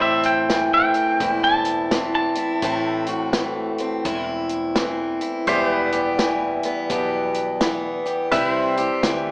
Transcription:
0.00 0.92 A1 medium
0.00 1.21 A2 medium
0.00 2.61 A3 medium
0.00 0.95 C4 medium
0.00 1.21 E4 medium
0.00 5.43 C5 medium
0.00 0.05 D5 medium
0.00 0.25 E5 medium
0.05 5.44 E5 medium
0.23 0.72 G5 medium
0.23 closed hi-hat medium
0.50 1.92 E3 medium
0.50 snare loud
0.50 closed hi-hat medium
0.74 1.42 G5 medium
0.94 1.92 C4 medium
0.94 closed hi-hat medium
1.20 2.34 E1 medium
1.20 2.63 E2 medium
1.20 2.36 E4 medium
1.20 kick loud
1.20 closed hi-hat medium
1.44 2.13 A5 loud
1.65 closed hi-hat medium
1.91 3.11 E3 medium
1.91 2.60 C4 medium
1.91 snare loud
1.91 closed hi-hat medium
2.15 4.25 A5 loud
2.35 2.65 E4 medium
2.35 closed hi-hat medium
2.62 3.76 A1 medium
2.62 4.05 A2 medium
2.62 5.44 A3 medium
2.62 3.79 C4 medium
2.62 3.08 E4 medium
2.62 kick loud
2.62 closed hi-hat medium
3.06 4.05 F#4 medium
3.06 closed hi-hat medium
3.33 4.76 E3 medium
3.33 snare loud
3.33 closed hi-hat medium
3.78 4.76 C4 medium
3.78 closed hi-hat medium
4.05 5.19 E1 medium
4.05 5.46 E2 medium
4.05 5.21 E4 medium
4.05 kick medium
4.05 closed hi-hat medium
4.49 closed hi-hat medium
4.76 6.18 E3 medium
4.76 5.44 C4 medium
4.76 snare loud
4.76 closed hi-hat medium
5.21 5.48 E4 medium
5.21 closed hi-hat medium
5.47 6.61 E1 medium
5.47 8.32 E2 medium
5.47 8.31 G3 medium
5.47 6.63 B3 medium
5.47 5.92 G4 medium
5.47 5.68 C5 medium
5.47 8.30 E5 medium
5.47 kick loud
5.47 closed hi-hat medium
5.68 8.29 B4 medium
5.92 6.91 G4 medium
5.92 closed hi-hat medium
6.19 7.60 E3 medium
6.19 snare loud
6.19 closed hi-hat medium
6.63 7.60 B3 medium
6.63 closed hi-hat medium
6.90 8.03 B1 medium
6.90 7.61 B2 medium
6.90 8.04 G4 medium
6.90 kick loud
6.90 closed hi-hat medium
7.34 closed hi-hat medium
7.61 9.03 E3 medium
7.61 8.32 B3 medium
7.61 snare loud
7.61 closed hi-hat medium
8.06 8.29 G4 medium
8.06 closed hi-hat medium
8.32 8.89 C2 medium
8.32 9.03 C3 medium
8.32 9.31 G3 medium
8.32 9.31 C4 medium
8.32 8.78 E4 medium
8.32 8.52 B4 medium
8.32 9.31 E5 medium
8.32 kick loud
8.32 closed hi-hat medium
8.52 9.31 C5 medium
8.77 9.31 G4 medium
8.77 closed hi-hat medium
9.03 9.31 D2 medium
9.03 9.31 E3 medium
9.03 snare loud
9.03 closed hi-hat medium

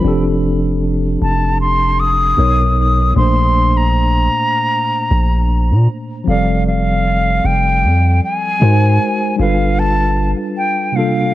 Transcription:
0.01 1.17 F1 loud
0.01 2.32 F3 medium
0.01 2.33 C4 medium
0.01 2.34 D4 medium
0.06 2.35 G4 medium
0.06 2.36 A4 medium
1.22 2.34 F1 loud
1.22 1.58 A5 medium
1.61 2.01 C6 loud
2.00 3.16 D#6 loud
2.36 3.13 B1 loud
2.36 3.15 B2 medium
2.36 3.15 B3 medium
2.36 3.16 D#4 medium
2.36 3.16 A#4 medium
2.36 3.17 C#5 medium
3.13 4.29 A#1 loud
3.13 6.22 A#2 medium
3.13 6.23 A#3 medium
3.13 6.24 D4 medium
3.13 3.78 C6 loud
3.18 6.24 A3 medium
3.18 6.25 C5 medium
3.77 5.89 A#5 loud
5.11 5.73 A#1 loud
5.71 5.88 A#2 loud
6.24 7.41 F1 loud
6.24 8.56 F3 medium
6.24 8.57 G3 medium
6.24 8.56 C4 medium
6.24 6.64 F5 medium
6.29 8.58 A4 medium
6.29 8.59 D5 medium
6.67 7.47 F5 loud
7.45 7.85 F1 loud
7.45 8.23 G5 loud
7.84 8.20 F2 loud
8.23 9.36 G#5 loud
8.60 8.99 G#2 loud
8.60 9.38 G#3 medium
8.60 9.39 D#4 medium
8.60 9.39 F#4 medium
8.60 9.40 A#4 medium
8.60 9.40 C5 medium
9.36 10.34 G1 loud
9.36 10.90 G3 medium
9.36 10.91 D4 medium
9.36 10.92 F4 medium
9.40 10.93 A4 medium
9.40 10.94 B4 medium
9.40 9.81 F5 loud
9.79 10.30 A5 loud
10.57 10.97 G5 loud
10.92 11.34 C3 medium
10.92 11.34 G3 medium
10.92 11.34 A#3 medium
10.92 11.34 F5 medium
10.96 11.34 D4 medium
10.96 11.34 F4 medium
10.96 11.34 A4 medium

